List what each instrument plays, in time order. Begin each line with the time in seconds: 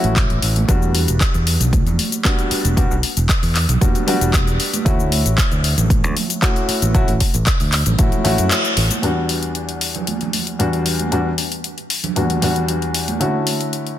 Already playing: grand piano A3 C#4 E4 F#4
0.04 fingered electric bass A1, closed hi-hat
0.16 kick, clap, closed hi-hat
0.30 fingered electric bass A1, closed hi-hat
0.42 fingered electric bass A1, open hi-hat
0.56 closed hi-hat, high conga
0.68 fingered electric bass E2, grand piano G3 B3 D4 F#4, kick, closed hi-hat, shaker
0.82 shaker
0.95 open hi-hat
1.08 fingered electric bass E1, closed hi-hat, shaker
1.21 kick, clap, closed hi-hat, shaker
1.34 fingered electric bass E2, closed hi-hat, shaker
1.47 open hi-hat
1.60 fingered electric bass B1, closed hi-hat, low conga, shaker
1.73 kick, closed hi-hat, high conga, shaker
1.86 fingered electric bass E2, closed hi-hat, low conga, shaker
1.99 open hi-hat, high conga
2.12 closed hi-hat, shaker
2.24 grand piano G3 B3 D4 F#4, kick, clap, closed hi-hat, shaker
2.39 closed hi-hat, shaker
2.51 muted fingered electric bass stroke, open hi-hat
2.64 fingered electric bass E1, closed hi-hat, high conga, shaker
2.76 grand piano G3 B3 D4 F#4, kick, closed hi-hat, shaker
2.91 fingered electric bass B1, shaker
3.03 open hi-hat
3.17 fingered electric bass E1, closed hi-hat, shaker
3.29 kick, clap, closed hi-hat, shaker
3.43 fingered electric bass E2, open hi-hat, shaker
3.55 clap, open hi-hat
3.69 fingered electric bass B1, closed hi-hat, low conga, shaker
3.81 fingered electric bass E1, grand piano G3 B3 D4 F#4, kick, closed hi-hat, high conga, shaker
3.94 closed hi-hat, low conga, shaker
4.07 grand piano G3 B3 D4 F#4, open hi-hat, high conga, low conga
4.21 fingered electric bass E1, closed hi-hat, shaker
4.34 kick, clap, closed hi-hat, shaker
4.47 closed hi-hat, shaker
4.60 open hi-hat
4.73 closed hi-hat, high conga, shaker
4.85 fingered electric bass D2, grand piano A3 C#4 E4 F#4, kick, closed hi-hat, shaker
5.00 shaker
5.12 open hi-hat
5.25 fingered electric bass A1, closed hi-hat, shaker
5.38 kick, clap, closed hi-hat, shaker
5.52 fingered electric bass D2, closed hi-hat, shaker
5.64 open hi-hat
5.78 fingered electric bass A1, closed hi-hat, low conga, shaker
5.90 kick, closed hi-hat, high conga, shaker
6.04 fingered electric bass D2, closed hi-hat, low conga, shaker
6.17 open hi-hat, high conga
6.30 closed hi-hat, shaker
6.42 grand piano A3 C#4 E4 F#4, kick, clap, closed hi-hat, shaker
6.56 closed hi-hat, shaker
6.68 muted fingered electric bass stroke, open hi-hat
6.82 fingered electric bass A1, closed hi-hat, high conga, shaker
6.94 grand piano A3 C#4 E4 F#4, kick, closed hi-hat, shaker
7.08 fingered electric bass A1, closed hi-hat, shaker
7.20 kick, open hi-hat
7.34 fingered electric bass A1, closed hi-hat, shaker
7.46 kick, clap, closed hi-hat, shaker
7.60 fingered electric bass D2, open hi-hat, shaker
7.72 clap, open hi-hat
7.86 fingered electric bass A1, closed hi-hat, low conga, shaker
7.98 fingered electric bass A1, grand piano A3 C#4 E4 F#4, kick, closed hi-hat, high conga, shaker
8.12 closed hi-hat, low conga, shaker
8.24 fingered electric bass A1, grand piano A3 C#4 E4 F#4, open hi-hat, high conga, low conga
8.38 fingered electric bass F#2, closed hi-hat, shaker
8.51 clap, closed hi-hat, shaker
8.65 closed hi-hat, shaker
8.77 fingered electric bass A1, open hi-hat
8.90 closed hi-hat, high conga, shaker
9.02 grand piano E2 G3 B3 D4 F#4, closed hi-hat
9.29 open hi-hat
9.43 closed hi-hat
9.55 closed hi-hat
9.69 closed hi-hat
9.81 open hi-hat
9.95 closed hi-hat, low conga
10.07 closed hi-hat, high conga
10.21 closed hi-hat, low conga
10.33 open hi-hat, high conga
10.47 closed hi-hat
10.59 grand piano E2 G3 B3 D4 F#4, closed hi-hat
10.73 closed hi-hat
10.86 open hi-hat
10.99 closed hi-hat, high conga
11.12 grand piano E2 G3 B3 D4 F#4, closed hi-hat
11.38 open hi-hat
11.52 closed hi-hat
11.64 closed hi-hat
11.78 closed hi-hat
11.90 open hi-hat
12.04 closed hi-hat, low conga
12.16 grand piano E2 G3 B3 D4 F#4, closed hi-hat, high conga
12.30 closed hi-hat, low conga
12.42 grand piano E2 G3 B3 D4 F#4, open hi-hat, high conga, low conga
12.56 closed hi-hat
12.68 closed hi-hat
12.82 closed hi-hat
12.94 open hi-hat
13.08 closed hi-hat, high conga
13.20 grand piano D3 A3 C#4 E4 F#4, closed hi-hat
13.47 open hi-hat
13.61 closed hi-hat
13.73 closed hi-hat
13.87 closed hi-hat